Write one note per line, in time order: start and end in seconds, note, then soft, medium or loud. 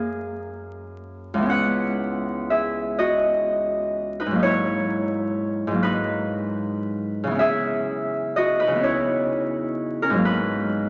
0.00 1.53 F#2 medium
0.00 1.53 A#3 soft
0.00 2.50 G#4 soft
0.00 0.56 C#5 medium
0.00 2.13 E5 medium
1.34 4.37 C#2 medium
1.34 4.39 E3 medium
1.42 5.32 B3 medium
1.42 4.43 C#4 medium
1.50 4.19 B4 medium
1.50 3.18 F#5 loud
2.50 6.41 G#4 medium
2.50 4.45 E5 medium
2.99 6.89 F#4 medium
2.99 4.99 D#5 loud
4.20 4.38 D#4 medium
4.20 4.58 B4 medium
4.26 5.66 G#2 medium
4.31 5.70 F#3 medium
4.31 5.73 A#3 medium
4.39 5.83 D#4 medium
4.39 6.91 C#5 loud
4.44 8.34 E4 medium
5.67 7.34 G#2 medium
5.67 7.36 F#3 medium
5.74 7.38 A#3 medium
5.83 7.43 D#4 medium
5.83 8.59 B4 loud
7.24 8.66 C#3 medium
7.24 8.70 E3 medium
7.31 8.74 B3 medium
7.31 8.78 C#4 medium
7.39 10.89 G#4 medium
7.39 10.28 E5 loud
8.36 10.89 F#4 medium
8.36 8.75 D#5 loud
8.60 10.25 D#4 medium
8.60 8.99 B4 medium
8.67 10.19 C#3 medium
8.67 10.21 E3 medium
8.75 10.89 B3 medium
8.75 10.02 C#4 medium
8.83 10.28 E4 medium
8.83 10.27 C#5 medium
10.02 10.28 C#4 medium
10.02 10.41 A#4 medium
10.10 10.89 G#2 medium
10.10 10.89 F#3 medium
10.17 10.89 A#3 medium
10.25 10.89 D#4 medium
10.25 10.89 B4 loud